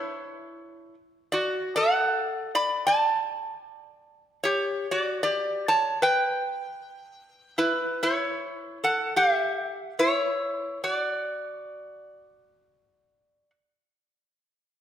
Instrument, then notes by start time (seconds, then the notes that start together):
resonator guitar played with a steel bar
Already playing: E4 C#5
1.32 F#4 D5
1.76 A4 F#5
2.55 D5 B5
2.87 D5 A5
4.44 G4 C#5
4.91 F#4 D5
5.23 G4 D5
5.68 C#5 A5
6.02 B4 G5
7.58 E4 B4
8.03 E4 C#5
8.84 A4 F#5
9.16 G4 E5
9.99 E4 C#5
10.84 F#4 D5